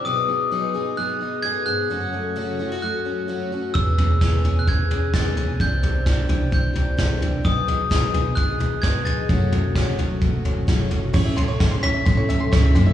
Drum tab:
CC |--------|--------|--------|--------|
SD |--------|--------|--o---o-|--o---o-|
FT |--------|--------|oooooooo|oooooooo|
BD |--------|--------|o-o-o-o-|o-o-o-o-|

CC |--------|--------|x-------|
SD |--o---o-|--o---o-|--o---o-|
FT |oooooooo|oooooooo|oooooooo|
BD |o-o-o-o-|o-o-o-o-|o-o-o-o-|